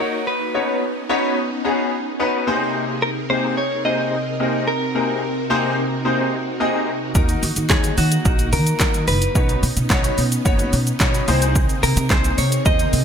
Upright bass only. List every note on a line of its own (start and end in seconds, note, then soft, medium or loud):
7.15 7.33 D#2 loud
7.43 7.52 D#3 loud
7.57 7.65 D#3 medium
7.70 7.88 D#2 loud
7.98 8.16 D#3 loud
8.25 8.54 A#1 loud
8.53 8.71 D#3 loud
8.80 9.09 D#3 loud
9.08 9.26 F#1 loud
9.35 9.53 B1 loud
9.63 9.72 B2 loud
9.77 9.86 B2 loud
9.90 10.08 B1 loud
10.18 10.36 B2 loud
10.46 10.63 F#1 loud
10.73 10.91 B2 loud
11.01 11.18 B2 loud
11.28 11.64 C2 loud
11.83 11.92 C3 loud
11.97 12.06 C3 loud
12.10 12.28 C2 loud
12.38 12.56 C3 loud
12.66 12.84 D#2 loud
12.93 13.04 C3 loud